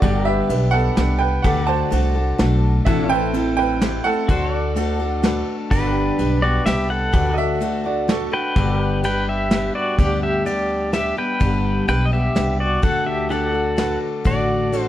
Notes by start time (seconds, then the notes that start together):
0.00 G1 G2 D3 G3 B3 D4 F#4 G4 A4 D5, kick, ride
0.05 D5
0.23 G4 E5
0.29 B4
0.49 B1 G3 B3 D4 G4 B4, ride
0.71 G3 B3 D4 G4 A4 F#5
0.96 C2 G3 B3 D4 G4 B4, snare, ride
1.19 B4 G5
1.42 D2 D3 A3 D4 F#4 G4 A4 B4 F#5, kick, ride
1.47 D5
1.65 F#4 C5 A5
1.71 A4
1.90 C2 A3 D4 F#4 A4, ride
2.14 D4 F#4 A4
2.38 B1 A3 D4 F#4 A4, snare, ride
2.85 A1 A2 E3 A3 C4 E4 F#4 A4 E5, kick, ride
2.89 D4
3.09 E4 B4 G5
3.14 C4
3.33 A3 C4 E4 A4, ride
3.57 B4 G5
3.81 A3 C4 E4 G4 A4, snare, ride
4.04 A3 C4 E4 A4 F#5
4.28 D2 D3 A3 D4 F#4 A4 C5, kick, ride
4.55 D5
4.76 A3 D4 F#4 A4, ride
4.99 D4 F#4 A4
5.22 A3 D4 F#4 A4 B4, snare, ride
5.71 G1 G2 D3 G3 B3 D4 F#4 G4 A4 B4 D5, kick, crash
5.91 G4
5.97 B4
6.18 B1 G3 B3 D4 G4, ride
6.42 G3 B3 D4 F#4 G4 D5
6.66 C2 G3 B3 D4 G4 E5, snare, ride
6.90 A4 F#5
7.13 D2 D3 A3 D4 F#4 G4 A4 B4 D5, kick, ride
7.33 F#4 D#5
7.38 A4 E5
7.60 A3 D4 F#4 A4, ride
7.84 D4 F#4 A4 D5
8.08 A3 D4 F#4 A4, snare, ride
8.31 D4 F#4 A4 B4 G5
8.56 G1 G2 D3 G3 B3 D4 F#4 G4 A4 D5, kick, ride
8.77 G4
8.83 B4
9.03 G3 B3 D4 G4 B4 G5, ride
9.29 G4 E5
9.50 G3 B3 D4 G4, snare, ride
9.75 F#4 D5
9.99 D2 G2 D3 G3 B3 D4 G4 D5, kick, ride
10.23 G4 E5
10.46 G3 B3 D4 G4 D5, ride
10.93 G3 B3 D4 G4 E5, snare, ride
11.16 G3 B3 D4 G4 B4 G5
11.40 G1 G2 D3 G3 B3 D4 G4, kick, ride
11.87 B1 G3 B3 D4 G4 B4 G5, ride
12.06 D#5
12.12 G3 B3 D4 G4 E5
12.35 C2 G3 B3 D4 G4 B4, snare, ride
12.60 F#4 D5
12.82 D2 D3 A3 D4 F#4 A4 F#5, kick, ride
13.07 G4 E5
13.29 A3 D4 F#4 G4 A4 D5 F#5, ride
13.50 F#4 A4
13.55 D4
13.77 A3 D4 F#4 A4 B4, snare, ride
14.24 A1 D3 A3 D4 F#4 A4 D5, kick, ride
14.72 A3 D4 F#4 A4, ride
14.81 C5